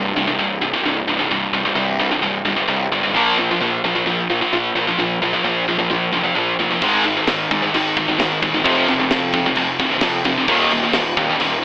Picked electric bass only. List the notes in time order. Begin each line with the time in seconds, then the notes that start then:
0.14 C2
0.38 C1
0.83 C1
1.06 C1
1.29 C1
1.52 C1
1.75 C2
2.21 C1
2.45 G1
2.68 C2
2.91 G1
3.14 A#1
3.60 A#1
3.84 A#1
4.06 A#1
4.52 A#1
4.75 A#1
4.98 A#1
5.21 A#1
5.43 A#1
5.91 A#1
6.12 F1
6.36 A#1
6.59 F1
6.82 G#1
7.27 G#1
7.50 G#2
7.73 G#1
8.19 G#1
8.43 D#1
8.65 F1
8.88 F1
9.10 F2
9.56 F1
9.79 C1
10.01 F2
10.25 F1
10.48 D#1
10.94 D#1
11.17 D#2
11.40 D#1